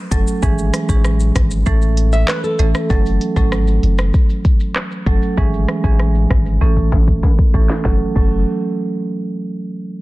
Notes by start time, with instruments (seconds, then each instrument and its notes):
0.12 sub bass F#1, marimba F#3 A3 C#4 A4, kick, closed hi-hat, shaker
0.27 shaker
0.42 sub bass G#1, marimba E3 G#3 C#4 G#4, kick, shaker
0.58 shaker
0.74 cross-stick, closed hi-hat, shaker
0.89 sub bass A1, marimba E3 G#3 C#4 G#4, kick, shaker
1.04 cross-stick, shaker
1.20 shaker
1.36 sub bass G#1, kick, cross-stick, closed hi-hat, shaker
1.51 shaker
1.66 sub bass A1, marimba E3 A3 C#4 A4, kick, shaker
1.82 shaker
1.97 closed hi-hat, shaker
2.13 nylon-string guitar E5, shaker
2.28 nylon-string guitar B4, cross-stick, clap, shaker
2.44 nylon-string guitar A4, shaker
2.59 sub bass A1, marimba E3 A3 C#4 A4, closed hi-hat, shaker
2.75 cross-stick, shaker
2.90 sub bass F#1, marimba F#3 A3 C#4 A4, kick, shaker
3.06 shaker
3.21 closed hi-hat, shaker
3.36 sub bass G#1, marimba F#3 A3 C#4 A4, kick, shaker
3.52 cross-stick, shaker
3.67 shaker
3.83 sub bass F#1, closed hi-hat, shaker
3.98 cross-stick, shaker
4.14 kick, shaker
4.29 shaker
4.45 kick, closed hi-hat, shaker
4.60 shaker
4.76 cross-stick, clap, shaker
4.91 shaker
5.06 sub bass F#1, marimba F#3 A3 C#4 A4, kick, closed hi-hat, shaker
5.22 shaker
5.37 sub bass G#1, marimba E3 G#3 C#4 G#4, kick, shaker
5.53 shaker
5.68 cross-stick, closed hi-hat, shaker
5.84 sub bass A1, marimba E3 G#3 C#4 G#4, kick, shaker
5.99 cross-stick, shaker
6.15 shaker
6.30 sub bass G#1, kick, cross-stick, closed hi-hat, shaker
6.46 shaker
6.61 sub bass A1, marimba E3 A3 C#4 A4, kick, shaker
6.77 kick, shaker
6.92 kick, closed hi-hat, high timbale, shaker
7.07 kick, shaker
7.23 kick, high timbale, shaker
7.38 kick, shaker
7.54 sub bass A1, marimba E3 A3 C#4 A4, kick, closed hi-hat, shaker
7.70 snare, high timbale, shaker
7.85 sub bass F#1, marimba F#3 A3 C#4 A4, kick, snare, shaker
8.15 sub bass F#1, marimba F#3 A3 C#4 A4, kick, crash, shaker